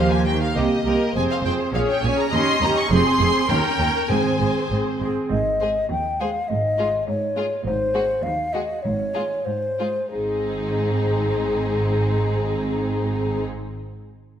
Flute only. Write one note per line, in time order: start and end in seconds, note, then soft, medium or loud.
5.30 5.87 D#5 medium
5.91 6.22 G5 medium
6.21 6.50 F5 soft
6.49 7.07 D#5 medium
7.08 7.65 C#5 medium
7.65 8.24 C5 medium
8.23 8.55 F5 medium
8.53 8.84 D#5 soft
8.82 9.46 C#5 soft
9.45 10.11 C5 soft
10.12 13.45 G#4 soft